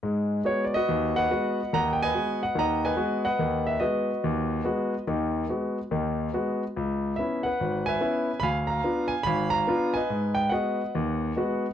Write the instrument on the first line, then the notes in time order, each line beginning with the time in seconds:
grand piano
0.03 G#2 G#3
0.44 G#3 B3 F#4 C#5
0.65 D5
0.74 F#4 B4 D#5
0.89 D#2
1.16 B4 D#5 F#5
1.31 G#3 B3 F#4
1.73 D#2 D#3 D#5 F#5 A#5
1.93 G5
2.02 B4 D#5 G#5
2.14 G#3 B3 F#4
2.43 F#5
2.55 D#2 D#3 A#5
2.59 D#5 F#5
2.85 B4 D#5 G#5
2.96 G#3 B3 F#4
3.25 B4 D#5 F#5
3.39 D#2 D#3
3.67 E5
3.80 G#3 B3 F#4 B4 D#5
4.24 D#2
4.64 G#3 B3 F#4
5.07 D#2 D#3
5.49 G#3 B3 F#4
5.91 D#2 D#3
6.34 G#3 B3 F#4
6.77 C#2
7.16 B3 C#4 E4 E5
7.43 B4 F#5
7.60 G#1
7.86 B4 E5 G#5
8.01 B3 C#4 E4
8.40 D2 F5 G#5 B5
8.67 F5 A#5
8.84 B3 D4 F4
9.08 G#5
9.23 G#1 F5 G#5 B5
9.50 F5 A#5
9.67 B3 D4 F4
9.93 B4 D#5 G#5
10.10 G#2
10.35 G5
10.49 G#3 B3 F#4 B4 D#5 F#5
10.95 D#2
11.36 G#3 B3 F#4